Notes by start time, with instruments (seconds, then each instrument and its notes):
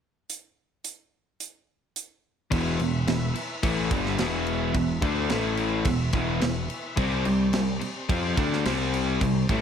0.30 closed hi-hat
0.84 closed hi-hat
1.40 closed hi-hat
1.96 closed hi-hat
2.51 picked electric bass E1, overdriven electric guitar E2 B2 E3, tonewheel organ E4 B4 E5, kick, crash
2.80 picked electric bass E1, overdriven electric guitar E2 B2, crash
3.07 picked electric bass E1, overdriven electric guitar E2 B2, snare, crash
3.34 muted overdriven electric guitar stroke, muted distorted electric guitar stroke, muted picked electric bass stroke, crash
3.63 picked electric bass A1, overdriven electric guitar A2 E3 A3, kick, crash
3.91 picked electric bass G1, overdriven electric guitar G2 D3 G3, kick, crash
4.06 snare
4.18 picked electric bass E1, overdriven electric guitar E2 B2 E3, snare, crash
4.46 crash
4.73 picked electric bass E1, overdriven electric guitar E2 B2, kick, crash
5.02 picked electric bass D2, overdriven electric guitar D3 A3 D4, kick, crash
5.30 picked electric bass A1, overdriven electric guitar A2 E3 A3, tonewheel organ A3, snare, crash
5.57 crash
5.85 picked electric bass E1, overdriven electric guitar E2 B2, tonewheel organ E5, kick, crash
6.13 picked electric bass E1, overdriven electric guitar E2 B2 E3, kick, crash
6.41 picked electric bass E1, overdriven electric guitar E2 B2, snare, crash
6.70 crash
6.96 picked electric bass C2, overdriven electric guitar C3 G3 C4, tonewheel organ C4 G4 D5, kick, crash
7.25 picked electric bass C2, overdriven electric guitar C3 G3, crash
7.53 picked electric bass C2, overdriven electric guitar C3 G3, snare, crash
7.81 muted overdriven electric guitar stroke, muted distorted electric guitar stroke, muted picked electric bass stroke, crash
8.09 picked electric bass F2, overdriven electric guitar F3 C4 F4, kick, crash
8.37 picked electric bass D2, overdriven electric guitar D3 A3 D4, kick, crash
8.53 snare
8.65 picked electric bass C2, overdriven electric guitar C3 G3 C4, snare, crash
8.94 crash
9.21 picked electric bass C2, overdriven electric guitar C3 G3, kick, crash
9.49 picked electric bass A1, overdriven electric guitar A2 E3 A3, kick, crash